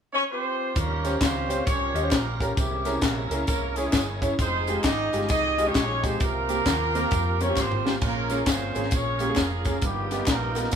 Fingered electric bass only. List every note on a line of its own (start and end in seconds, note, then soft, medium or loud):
0.76 1.15 D#2 medium
1.21 1.60 C#2 medium
1.67 1.91 C2 medium
1.94 2.09 D#2 medium
2.12 2.50 A#1 loud
2.57 2.96 C2 loud
3.02 3.27 A#1 medium
3.30 3.45 C#2 medium
3.47 3.86 C2 loud
3.93 4.32 G1 medium
4.39 4.77 F1 loud
4.83 5.08 G#1 medium
5.14 5.27 G1 medium
5.30 5.69 C2 medium
5.75 6.13 A#1 loud
6.21 6.59 C2 loud
6.66 7.04 D#2 medium
7.12 7.50 F2 medium
7.57 7.95 G#1 medium
8.02 8.40 A#1 loud
8.46 8.71 G1 medium
8.76 8.90 G#1 medium
8.92 9.30 A#1 medium
9.37 9.76 F1 loud
9.82 10.21 G1 loud
10.27 10.66 A#1 medium